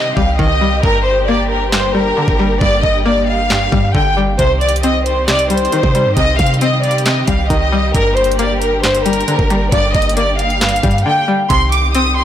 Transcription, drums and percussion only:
0.17 kick loud
0.39 kick loud
0.83 kick loud
1.72 snare loud
1.72 clap medium
2.28 kick medium
2.61 kick loud
2.84 kick loud
3.50 snare loud
3.50 clap medium
3.72 kick loud
3.95 kick loud
4.39 kick loud
4.39 closed hi-hat medium
4.61 closed hi-hat soft
4.69 closed hi-hat medium
4.76 closed hi-hat medium
4.83 closed hi-hat medium
5.06 closed hi-hat medium
5.28 snare loud
5.28 clap loud
5.28 closed hi-hat soft
5.39 closed hi-hat medium
5.50 closed hi-hat medium
5.57 closed hi-hat medium
5.65 closed hi-hat soft
5.72 closed hi-hat medium
5.83 kick medium
5.95 closed hi-hat medium
6.17 kick loud
6.17 closed hi-hat medium
6.39 kick loud
6.39 closed hi-hat medium
6.46 closed hi-hat medium
6.54 closed hi-hat soft
6.61 closed hi-hat medium
6.83 closed hi-hat soft
6.91 closed hi-hat medium
6.98 closed hi-hat medium
7.06 snare loud
7.06 clap medium
7.06 closed hi-hat medium
7.28 kick loud
7.28 closed hi-hat medium
7.50 kick loud
7.50 closed hi-hat medium
7.95 kick loud
7.95 closed hi-hat medium
8.17 closed hi-hat soft
8.24 closed hi-hat medium
8.32 closed hi-hat medium
8.39 closed hi-hat medium
8.62 closed hi-hat medium
8.84 snare loud
8.84 clap medium
8.84 closed hi-hat soft
8.95 closed hi-hat medium
9.06 closed hi-hat medium
9.13 closed hi-hat medium
9.20 closed hi-hat soft
9.28 closed hi-hat medium
9.39 kick medium
9.50 closed hi-hat medium
9.72 kick loud
9.72 closed hi-hat medium
9.95 kick medium
9.95 closed hi-hat soft
9.95 open hi-hat medium
10.02 closed hi-hat medium
10.09 closed hi-hat medium
10.17 closed hi-hat medium
10.39 closed hi-hat medium
10.50 closed hi-hat soft
10.61 snare loud
10.61 clap medium
10.61 closed hi-hat medium
10.69 closed hi-hat medium
10.76 closed hi-hat medium
10.83 kick loud
10.83 closed hi-hat medium
10.91 closed hi-hat medium
10.98 closed hi-hat soft
11.50 kick loud
11.50 closed hi-hat medium
11.72 closed hi-hat medium
11.95 closed hi-hat medium

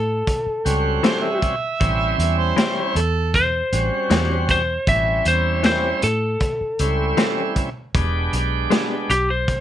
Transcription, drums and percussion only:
0.27 kick medium
0.27 closed hi-hat medium
0.66 closed hi-hat medium
1.04 snare loud
1.04 closed hi-hat medium
1.42 kick medium
1.42 closed hi-hat medium
1.81 kick loud
1.81 closed hi-hat medium
2.20 closed hi-hat medium
2.58 snare loud
2.58 closed hi-hat medium
2.96 closed hi-hat medium
3.34 kick medium
3.34 closed hi-hat medium
3.73 closed hi-hat medium
4.11 snare loud
4.11 closed hi-hat medium
4.49 kick medium
4.49 closed hi-hat medium
4.87 kick loud
4.87 closed hi-hat medium
5.25 closed hi-hat medium
5.64 snare loud
5.64 closed hi-hat medium
6.02 closed hi-hat medium
6.41 kick medium
6.41 closed hi-hat medium
6.79 closed hi-hat medium
7.17 snare medium
7.17 closed hi-hat medium
7.56 kick medium
7.56 closed hi-hat medium
7.95 kick loud
7.95 closed hi-hat medium
8.33 closed hi-hat medium
8.71 snare loud
8.71 closed hi-hat medium
9.10 closed hi-hat medium
9.48 kick medium
9.48 closed hi-hat medium

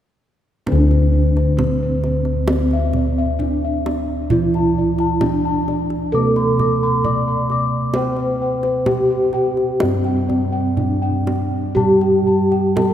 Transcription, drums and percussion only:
0.67 kendang high soft
0.67 kendang low medium
0.91 kendang slap soft
1.37 kendang slap soft
1.59 kendang slap soft
1.59 kendang high medium
1.59 kendang low medium
2.04 kendang slap soft
2.25 kendang slap soft
2.48 kendang high medium
2.71 kendang slap soft
2.93 kendang slap soft
2.93 kendang low medium
3.40 kendang low soft
3.86 kendang slap soft
3.86 kendang high soft
4.30 kendang low medium
4.54 kendang slap soft
4.98 kendang slap soft
5.21 kendang slap soft
5.21 kendang high medium
5.21 kendang low medium
5.68 kendang slap soft
5.90 kendang slap soft
6.36 kendang slap soft
6.59 kendang slap soft
6.59 kendang low soft
7.04 kendang low medium
7.50 kendang slap soft
7.94 kendang high soft
7.94 kendang low medium
8.16 kendang slap soft
8.63 kendang slap soft
8.86 kendang slap soft
8.86 kendang high medium
8.86 kendang low medium
9.33 kendang slap soft
9.57 kendang slap soft
9.80 kendang high medium
10.04 kendang slap soft
10.30 kendang slap soft
10.30 kendang low soft
10.77 kendang low medium
11.27 kendang slap soft
11.27 kendang high soft
11.76 kendang low medium
12.01 kendang slap soft
12.52 kendang slap soft
12.77 kendang slap soft
12.77 kendang high medium
12.77 kendang low medium

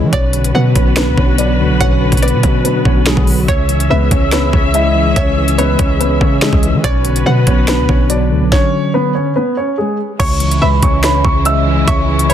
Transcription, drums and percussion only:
0.13 kick loud
0.13 closed hi-hat medium
0.33 closed hi-hat medium
0.44 closed hi-hat medium
0.75 kick medium
0.75 closed hi-hat medium
0.96 finger snap medium
0.96 snare loud
0.96 closed hi-hat medium
1.18 kick medium
1.38 closed hi-hat medium
1.81 kick loud
1.81 closed hi-hat medium
2.12 kick medium
2.12 closed hi-hat medium
2.17 closed hi-hat medium
2.23 closed hi-hat medium
2.28 closed hi-hat medium
2.43 kick loud
2.43 closed hi-hat medium
2.65 closed hi-hat medium
2.85 kick medium
3.06 finger snap medium
3.06 snare loud
3.17 kick loud
3.27 open hi-hat soft
3.48 kick loud
3.48 closed hi-hat medium
3.69 closed hi-hat medium
3.80 closed hi-hat medium
4.11 kick medium
4.11 closed hi-hat medium
4.31 finger snap medium
4.31 snare loud
4.31 closed hi-hat medium
4.53 kick medium
4.74 closed hi-hat medium
5.16 kick loud
5.16 closed hi-hat medium
5.48 closed hi-hat medium
5.59 closed hi-hat medium
5.79 kick medium
5.79 closed hi-hat medium
6.01 closed hi-hat medium
6.21 kick medium
6.41 finger snap medium
6.41 snare loud
6.53 kick loud
6.63 closed hi-hat medium
6.84 kick loud
6.84 closed hi-hat medium
7.05 closed hi-hat medium
7.16 closed hi-hat medium
7.47 kick medium
7.47 closed hi-hat medium
7.67 finger snap medium
7.67 snare loud
7.67 closed hi-hat medium
7.89 kick medium
8.10 closed hi-hat medium
8.52 kick loud
8.52 snare medium
10.20 kick loud
10.20 closed hi-hat medium
10.20 crash loud
10.40 closed hi-hat medium
10.51 closed hi-hat medium
10.82 kick loud
10.82 closed hi-hat medium
11.03 finger snap medium
11.03 snare loud
11.03 closed hi-hat medium
11.25 kick medium
11.45 closed hi-hat medium
11.88 kick loud
11.88 closed hi-hat medium
12.19 closed hi-hat medium
12.30 closed hi-hat medium

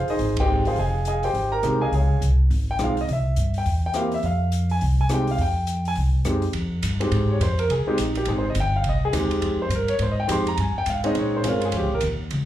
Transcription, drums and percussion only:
0.08 open hi-hat soft
0.19 open hi-hat soft
0.37 kick medium
0.37 ride medium
0.65 open hi-hat soft
0.76 open hi-hat soft
1.05 closed hi-hat medium
1.23 open hi-hat soft
1.35 open hi-hat soft
1.63 cross-stick medium
1.63 closed hi-hat soft
1.93 open hi-hat soft
2.22 closed hi-hat medium
2.51 open hi-hat soft
2.79 cross-stick medium
2.79 closed hi-hat soft
2.97 open hi-hat soft
3.09 open hi-hat soft
3.36 closed hi-hat medium
3.54 open hi-hat soft
3.66 open hi-hat soft
3.94 cross-stick medium
3.94 closed hi-hat soft
4.12 open hi-hat soft
4.23 open hi-hat soft
4.52 closed hi-hat medium
4.69 open hi-hat soft
4.81 open hi-hat soft
5.09 cross-stick medium
5.09 closed hi-hat soft
5.27 open hi-hat soft
5.38 open hi-hat soft
5.67 closed hi-hat soft
5.85 open hi-hat soft
5.95 open hi-hat soft
6.25 cross-stick medium
6.25 closed hi-hat soft
6.42 open hi-hat soft
6.53 ride soft
6.83 hi-hat pedal medium
6.83 ride medium
7.01 ride soft
7.12 ride medium
7.41 hi-hat pedal soft
7.41 ride medium
7.59 ride soft
7.70 ride soft
7.98 hi-hat pedal medium
7.98 ride medium
8.15 ride soft
8.25 ride medium
8.55 hi-hat pedal soft
8.55 ride medium
8.84 ride soft
9.13 hi-hat pedal medium
9.13 ride medium
9.31 ride soft
9.42 ride soft
9.70 hi-hat pedal soft
9.70 ride soft
9.88 ride soft
9.99 ride soft
10.29 hi-hat pedal medium
10.29 ride medium
10.47 ride soft
10.57 ride soft
10.86 hi-hat pedal soft
10.86 ride medium
11.04 ride soft
11.15 ride medium
11.44 hi-hat pedal medium
11.44 ride medium
11.61 ride soft
11.72 ride medium
12.01 hi-hat pedal soft
12.01 ride medium
12.31 ride medium

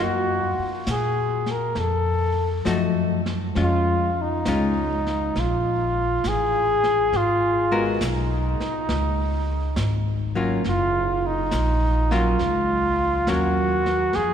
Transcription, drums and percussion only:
0.87 snare medium
0.87 hi-hat pedal medium
1.46 snare soft
1.75 brush sweep medium
1.75 snare soft
2.66 snare medium
2.66 hi-hat pedal soft
3.26 snare soft
3.55 brush sweep soft
3.55 snare soft
4.45 snare medium
4.45 hi-hat pedal medium
5.06 snare soft
5.36 brush sweep soft
5.36 snare soft
6.24 snare medium
6.24 hi-hat pedal soft
6.83 snare soft
7.13 brush sweep soft
7.13 snare soft
8.01 snare medium
8.01 hi-hat pedal medium
8.60 snare soft
8.89 brush sweep medium
8.89 snare soft
9.76 snare medium
9.76 hi-hat pedal medium
10.64 brush sweep soft
10.64 snare soft
11.51 snare medium
11.51 hi-hat pedal medium
12.11 snare soft
12.39 brush sweep soft
12.39 snare soft
13.27 snare medium
13.27 hi-hat pedal soft
13.86 snare soft
14.13 brush sweep soft
14.13 snare soft

